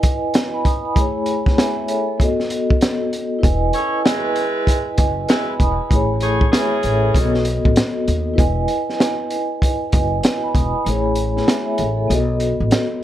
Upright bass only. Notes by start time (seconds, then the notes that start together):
3.44 E1
4.98 F#1
5.60 E1
5.91 A1
6.84 A1
7.15 B1
7.66 A1
8.08 D#2
8.38 E1
9.93 F#1
10.55 E1
10.86 A1
11.79 A1
12.10 B1
12.60 A1